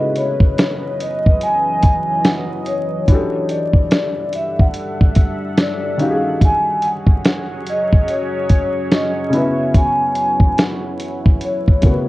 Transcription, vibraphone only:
0.00 0.18 D#5 medium
0.18 1.03 C#5 medium
1.01 1.43 D#5 medium
1.43 2.28 G#5 loud
2.26 2.69 F#5 medium
2.67 3.46 C#5 loud
3.51 4.30 D5 medium
4.35 4.60 E5 medium
4.61 5.62 F#5 medium
5.61 6.02 D5 medium
6.01 6.39 F5 loud
6.45 6.86 G#5 loud
6.86 7.26 F#5 medium
7.27 7.69 F#5 medium
7.70 8.11 D#5 medium
8.10 8.51 C#5 medium
8.52 8.90 C#5 medium
8.93 9.31 D#5 medium
9.36 9.77 E5 medium
9.77 10.55 G#5 loud
10.62 11.46 F#5 medium
11.45 12.09 C#5 medium

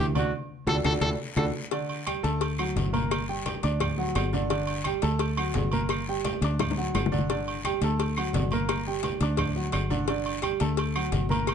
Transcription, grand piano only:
0.15 0.29 D3 medium
0.15 0.30 D4 loud
0.15 0.30 D5 loud
0.67 0.78 D4 loud
0.67 0.78 F#4 loud
0.67 0.79 A4 loud
0.85 0.96 D4 loud
0.85 0.96 F#4 loud
0.85 0.96 A4 loud
1.02 1.13 D4 medium
1.02 1.14 F#4 loud
1.02 1.14 A4 medium
1.37 1.49 D4 loud
1.37 1.48 F#4 loud
1.37 1.48 A4 loud
1.71 2.00 D3 medium
1.71 2.00 D4 medium
1.71 2.01 D5 medium
2.06 2.21 G3 medium
2.06 2.21 G4 medium
2.06 2.21 G5 medium
2.23 2.52 A3 medium
2.23 2.52 A4 medium
2.23 2.52 A5 loud
2.59 2.88 F#3 medium
2.59 2.88 F#4 medium
2.59 2.88 F#5 medium
2.93 3.22 A#3 medium
2.93 3.22 A#4 medium
2.93 3.22 A#5 medium
3.28 3.57 G3 medium
3.28 3.57 G4 medium
3.28 3.58 G5 medium
3.63 3.92 D4 medium
3.63 3.92 D5 medium
3.63 3.92 D6 medium
3.98 4.27 F#3 medium
3.98 4.27 F#4 medium
3.98 4.27 F#5 medium
4.33 4.47 D3 medium
4.33 4.48 D4 medium
4.33 4.48 D5 loud
4.50 4.79 D3 medium
4.50 4.79 D4 medium
4.50 4.79 D5 medium
4.85 5.00 G3 medium
4.85 5.00 G4 medium
4.85 5.00 G5 medium
5.02 5.31 A3 medium
5.02 5.31 A4 loud
5.02 5.32 A5 loud
5.37 5.66 F#3 medium
5.37 5.67 F#4 medium
5.37 5.67 F#5 medium
5.72 6.01 A#3 medium
5.72 6.01 A#4 medium
5.72 6.01 A#5 medium
6.08 6.36 G3 medium
6.08 6.37 G4 medium
6.08 6.37 G5 medium
6.44 6.72 D4 medium
6.44 6.72 D5 medium
6.44 6.72 D6 medium
6.77 7.06 F#3 medium
6.77 7.06 F#4 medium
6.77 7.06 F#5 medium
7.12 7.26 D3 loud
7.12 7.26 D4 medium
7.12 7.26 D5 loud
7.29 7.58 D3 medium
7.29 7.58 D4 medium
7.29 7.59 D5 medium
7.66 7.80 G3 medium
7.66 7.80 G4 medium
7.66 7.79 G5 medium
7.83 8.11 A3 medium
7.83 8.12 A4 medium
7.83 8.12 A5 medium
8.17 8.46 F#3 medium
8.17 8.46 F#4 medium
8.17 8.46 F#5 medium
8.53 8.81 A#3 medium
8.53 8.81 A#4 medium
8.53 8.81 A#5 medium
8.87 9.15 G3 medium
8.87 9.15 G4 medium
8.87 9.16 G5 medium
9.22 9.50 D4 medium
9.22 9.51 D5 medium
9.22 9.51 D6 medium
9.56 9.84 F#3 medium
9.56 9.85 F#4 medium
9.56 9.85 F#5 medium
9.90 10.05 D3 loud
9.90 10.05 D4 medium
9.90 10.05 D5 loud
10.09 10.37 D3 medium
10.09 10.37 D4 medium
10.09 10.38 D5 medium
10.42 10.57 G3 medium
10.42 10.57 G4 medium
10.42 10.57 G5 medium
10.61 10.89 A3 medium
10.61 10.90 A4 medium
10.61 10.89 A5 medium
10.95 11.24 F#3 medium
10.95 11.24 F#4 medium
10.95 11.24 F#5 medium
11.30 11.54 A#3 medium
11.30 11.54 A#4 medium
11.30 11.54 A#5 medium

